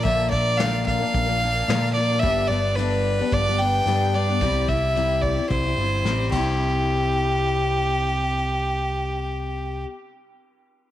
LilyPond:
<<
  \new Staff \with { instrumentName = "Fiddle" } { \time 4/4 \key c \major \tempo 4 = 110 e''8 d''8 f''8 f''2 d''8 | e''8 d''8 b'4 d''8 g''4 d''8~ | d''8 e''4 d''8 c''4. g'8~ | g'1~ |
g'1 | }
  \new Staff \with { instrumentName = "Steel-string acoustic guitar" } { \time 4/4 \key c \major <bes, d f bes d' bes'>8 <f bes d' bes'>8 <bes, d f bes d' bes'>8. <f bes d' bes'>8 <f bes d' bes'>16 <f bes d' bes'>8 <bes, d f bes d' bes'>8 <f bes d' bes'>16 <f bes d' bes'>16 | <g, d g b d' g'>8 <g b d' g'>8 <g, d g b d' g'>8. <g b d' g'>8 <g b d' g'>16 <g b d' g'>8 <g, d g b d' g'>8 <g b d' g'>16 <g b d' g'>16 | <c g c' e' g'>8 <g c' e' g'>8 <c g c' e' g'>8. <c' e' g'>8 <c' e' g'>16 <g c' e' g'>8 <c g c' e' g'>8 <c g c' e' g'>8~ | <c g c' e' g'>1~ |
<c g c' e' g'>1 | }
  \new Staff \with { instrumentName = "Picked electric bass" } { \clef bass \time 4/4 \key c \major bes,,8 bes,,4. bes,,4 bes,4 | g,,8 g,,4. g,,4 g,4 | c,8 c,4. c,8 g,,8 a,,8 c,8~ | c,1~ |
c,1 | }
  \new DrumStaff \with { instrumentName = "Drums" } \drummode { \time 4/4 <hh bd>8 bd8 <hh sn>8 <bd sn>8 <hh bd>4 <hh sn>4 | <hh bd>4 hh4 <hh bd>4 hh4 | <hh bd>8 bd8 hh8 bd8 <hh bd>4 sn8 <bd cymr>8 | r4 r4 r4 r4 |
r4 r4 r4 r4 | }
>>